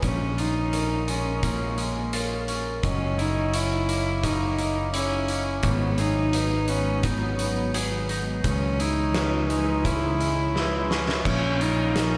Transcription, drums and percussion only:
0.03 kick, closed hi-hat
0.38 closed hi-hat
0.73 closed hi-hat
1.08 closed hi-hat
1.43 kick, closed hi-hat
1.78 closed hi-hat
2.13 closed hi-hat
2.48 closed hi-hat
2.83 kick, closed hi-hat
3.19 closed hi-hat
3.54 closed hi-hat
3.89 closed hi-hat
4.24 kick, closed hi-hat
4.58 closed hi-hat
4.94 closed hi-hat
5.28 closed hi-hat
5.63 kick, closed hi-hat
5.98 closed hi-hat
6.33 closed hi-hat
6.68 closed hi-hat
7.03 kick, closed hi-hat
7.39 closed hi-hat
7.74 closed hi-hat
8.09 closed hi-hat
8.44 kick, closed hi-hat
8.80 closed hi-hat
9.14 snare, closed hi-hat
9.50 closed hi-hat
9.85 kick, closed hi-hat
10.21 closed hi-hat
10.56 snare
10.91 snare
11.09 snare
11.25 kick, crash
11.61 closed hi-hat
11.96 snare, closed hi-hat

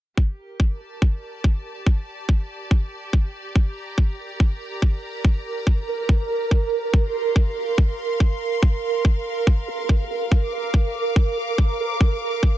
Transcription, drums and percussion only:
0.17 kick
0.60 kick
1.02 kick
1.44 kick
1.86 kick
2.29 kick
2.71 kick
3.13 kick
3.56 kick
3.98 kick
4.40 kick
4.82 kick
5.25 kick
5.67 kick
6.09 kick
6.51 kick
6.94 kick
7.36 kick
7.78 kick
8.20 kick
8.63 kick
9.05 kick
9.47 kick
9.89 kick
10.32 kick
10.74 kick
11.16 kick
11.58 kick
12.01 kick
12.43 kick

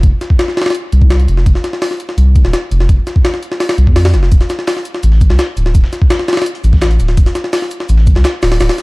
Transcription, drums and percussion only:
0.03 kick, closed hi-hat
0.21 snare, closed hi-hat
0.30 kick
0.39 snare, closed hi-hat
0.48 snare
0.57 snare, open hi-hat
0.61 snare, open hi-hat
0.66 snare, open hi-hat
0.70 snare, open hi-hat
0.75 closed hi-hat
0.92 closed hi-hat
1.02 kick
1.10 snare, closed hi-hat
1.20 closed hi-hat
1.28 closed hi-hat
1.37 snare
1.46 kick, closed hi-hat
1.55 snare
1.64 snare, closed hi-hat
1.73 snare
1.82 snare, open hi-hat
1.91 snare
2.00 closed hi-hat
2.09 snare
2.18 closed hi-hat
2.35 kick, closed hi-hat
2.45 snare
2.53 snare, closed hi-hat
2.71 closed hi-hat
2.80 snare
2.89 kick, closed hi-hat
3.07 snare, closed hi-hat
3.16 kick
3.25 snare, closed hi-hat
3.34 snare
3.43 closed hi-hat
3.52 snare
3.60 snare, open hi-hat
3.69 snare, open hi-hat
3.78 closed hi-hat
3.87 kick
3.96 snare, open hi-hat
4.05 snare, open hi-hat
4.14 snare, closed hi-hat
4.23 snare
4.32 kick, closed hi-hat, shaker
4.41 snare, closed hi-hat
4.49 snare, closed hi-hat, shaker
4.59 snare
4.67 snare, open hi-hat, shaker
4.77 snare
4.85 closed hi-hat, shaker
4.94 snare
5.03 closed hi-hat, shaker
5.12 snare
5.21 kick, closed hi-hat, shaker
5.30 snare
5.39 snare, closed hi-hat, shaker
5.57 closed hi-hat, shaker
5.66 snare
5.75 kick, closed hi-hat, shaker
5.84 snare
5.93 snare, closed hi-hat, shaker
6.02 kick
6.10 snare, closed hi-hat, shaker
6.19 snare
6.28 snare, open hi-hat, shaker
6.33 snare, open hi-hat
6.37 snare, open hi-hat
6.42 snare, open hi-hat
6.46 closed hi-hat, shaker
6.55 closed hi-hat
6.64 closed hi-hat, shaker
6.73 kick, snare
6.81 snare, closed hi-hat, shaker
6.91 closed hi-hat
6.99 closed hi-hat, shaker
7.08 snare, closed hi-hat
7.17 kick, closed hi-hat, shaker
7.26 snare, closed hi-hat
7.35 snare, closed hi-hat, shaker
7.44 snare
7.53 snare, open hi-hat, shaker
7.62 snare
7.71 closed hi-hat, shaker
7.80 snare
7.89 closed hi-hat, shaker
7.98 snare
8.06 kick, closed hi-hat, shaker
8.15 snare
8.24 snare, closed hi-hat, shaker
8.42 snare, open hi-hat, shaker
8.52 snare, open hi-hat
8.60 snare, open hi-hat, shaker
8.69 snare, open hi-hat
8.78 snare, closed hi-hat, shaker

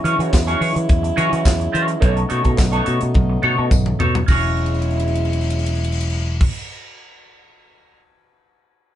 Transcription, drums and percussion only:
0.05 closed hi-hat
0.20 closed hi-hat
0.33 kick, snare, clap, tambourine
0.48 closed hi-hat
0.62 open hi-hat
0.76 closed hi-hat
0.89 kick, closed hi-hat
1.04 closed hi-hat
1.18 closed hi-hat
1.33 closed hi-hat
1.45 kick, snare, clap, tambourine
1.61 closed hi-hat
1.75 closed hi-hat
1.88 closed hi-hat
2.02 kick, closed hi-hat
2.17 closed hi-hat
2.30 closed hi-hat
2.45 kick, closed hi-hat
2.58 kick, snare, clap, tambourine
2.73 closed hi-hat
2.86 closed hi-hat
3.01 closed hi-hat
3.14 kick, high tom
3.43 mid tom
3.71 kick, mid tom, tambourine
3.86 mid tom
4.00 floor tom
4.15 floor tom
4.28 kick, crash, tambourine
4.57 crash
4.66 ride
4.74 crash
4.82 ride
4.91 crash
5.00 ride
5.08 crash
5.15 ride
5.25 crash
5.33 ride
5.41 crash
5.50 ride
5.59 crash
5.66 ride
5.75 crash
5.84 ride
5.92 crash
6.01 ride
6.10 crash
6.41 kick, crash

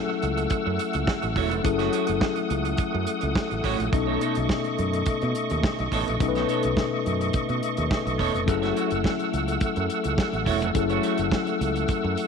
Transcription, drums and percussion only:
0.22 closed hi-hat
0.37 closed hi-hat
0.50 kick, closed hi-hat
0.79 closed hi-hat
0.93 closed hi-hat
1.07 kick, snare
1.22 closed hi-hat
1.36 kick, open hi-hat
1.51 closed hi-hat
1.64 kick, closed hi-hat
1.79 snare, closed hi-hat
1.93 closed hi-hat
2.07 closed hi-hat
2.21 kick, snare
2.36 closed hi-hat
2.50 closed hi-hat
2.65 closed hi-hat
2.77 kick, closed hi-hat
3.07 closed hi-hat
3.21 closed hi-hat
3.35 kick, snare
3.51 closed hi-hat
3.64 kick, open hi-hat
3.80 closed hi-hat
3.93 kick, closed hi-hat
4.21 closed hi-hat
4.35 closed hi-hat
4.49 kick, snare
4.64 closed hi-hat
4.78 closed hi-hat
4.93 closed hi-hat
5.06 kick, closed hi-hat
5.21 closed hi-hat
5.35 closed hi-hat
5.50 closed hi-hat
5.63 kick, snare
5.79 closed hi-hat
5.92 kick, open hi-hat
6.08 closed hi-hat
6.20 kick, closed hi-hat
6.35 snare, closed hi-hat
6.49 closed hi-hat
6.63 closed hi-hat
6.77 kick, snare
7.06 closed hi-hat
7.21 closed hi-hat
7.33 kick, closed hi-hat
7.49 closed hi-hat
7.63 closed hi-hat
7.77 closed hi-hat
7.91 kick, snare
8.07 closed hi-hat
8.19 kick, open hi-hat
8.35 closed hi-hat
8.48 kick, closed hi-hat
8.63 snare, closed hi-hat
8.77 closed hi-hat
8.91 closed hi-hat
9.04 kick, snare
9.19 closed hi-hat
9.33 closed hi-hat
9.48 closed hi-hat
9.61 kick, closed hi-hat
9.76 closed hi-hat
9.90 closed hi-hat
10.04 closed hi-hat
10.18 kick, snare
10.34 closed hi-hat
10.46 kick, open hi-hat
10.62 closed hi-hat
10.75 kick, closed hi-hat
10.89 closed hi-hat
11.03 closed hi-hat
11.18 closed hi-hat
11.32 kick, snare
11.47 closed hi-hat
11.61 closed hi-hat
11.76 closed hi-hat
11.88 kick, closed hi-hat
12.17 closed hi-hat

